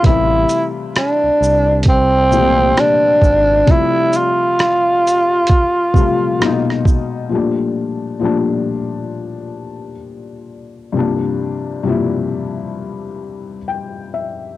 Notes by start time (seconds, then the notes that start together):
0.03 A1 C3 E3 G3 E4, kick, closed hi-hat
0.07 A3 E4
0.49 closed hi-hat, shaker
0.96 D4, cross-stick, closed hi-hat
1.24 C2
1.41 C2, shaker
1.83 kick, closed hi-hat
1.89 C4
2.31 A#2 E3 G3, shaker
2.35 C3 A3 G4
2.77 D4, cross-stick, closed hi-hat
3.22 G#1, kick, shaker
3.66 C3 F3 G3, kick, closed hi-hat
3.70 A3 E4 E5
4.13 F4, closed hi-hat, shaker
4.59 cross-stick, closed hi-hat
5.07 closed hi-hat, shaker
5.47 kick, closed hi-hat
5.94 C3 F3 G3, kick, shaker
5.98 A3 F4
6.39 A#2 F#3 G#3, cross-stick, closed hi-hat
6.43 B2 A#3 D#4
6.70 cross-stick
6.85 kick, shaker
7.29 A#2 F3 G3
7.34 A3 D4
8.20 A#2 F3 G3
8.24 A3 D4
10.92 G2 C3 F3 G3
10.97 A#3 D4
11.83 G2 C3 F3 G3
11.88 A#3 E4
13.68 G5
14.14 E5